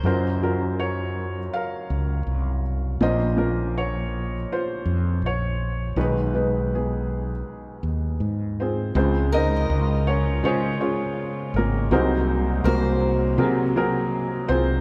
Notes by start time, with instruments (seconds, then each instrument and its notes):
Already playing: steel-string acoustic guitar C5
0.03 felt piano F#1 F#2 F#3 C#4 F4 A#4 C5, fretless electric bass F#2
0.42 felt piano F#3 C#4 F4 A#4
0.80 felt piano C#5
1.53 felt piano A#4 F5
1.90 fretless electric bass C#2
2.27 fretless electric bass C2
3.01 fretless electric bass A#1, felt piano A#1 A#2 A#3 C#4 F4 C5 D#5
3.37 felt piano A#3 C#4 F4 A#4
3.78 felt piano C#5
4.52 felt piano F4 C5
4.85 fretless electric bass F2
5.22 fretless electric bass A#1
5.26 felt piano C#5
5.96 fretless electric bass B1, felt piano B1 D#3 G#3 B3 D#4 B4
6.01 felt piano B4
6.34 felt piano G#3 B3 D#4 B4
6.75 felt piano B3 G#4
7.83 fretless electric bass D#2
8.20 fretless electric bass G#2
8.60 felt piano C4 F4 G#4 C5
8.95 fretless electric bass C#2, felt piano C#2 C#3 G#3 C4 F4 C5, string section C#3 G#3 F4
9.32 steel-string acoustic guitar A#4, felt piano D#5
9.37 felt piano D#4 C5
9.56 steel-string acoustic guitar D#5
9.70 fretless electric bass C#2
10.07 felt piano C#4 C#5
10.43 fretless electric bass C#3, felt piano G#3 C#4 F4 G#4 C5 C#5
10.47 felt piano C#4
10.80 felt piano G#3 C#4 F4 C#5
11.54 fretless electric bass G#1, felt piano A#4
11.58 felt piano A#3
11.91 fretless electric bass C2, felt piano C2 C3 F#3 C4 D#4 F#4 G#4 A#4 C5, string section C3 F#3 A#3
12.64 fretless electric bass C2, felt piano A#3 F#4 A#4, steel-string acoustic guitar C5
13.38 fretless electric bass C3, felt piano F#3 C4 G#4 A#4
13.76 felt piano F#3 C4 G#4 A#4
14.48 fretless electric bass C2, felt piano C4 F4 G#4 C5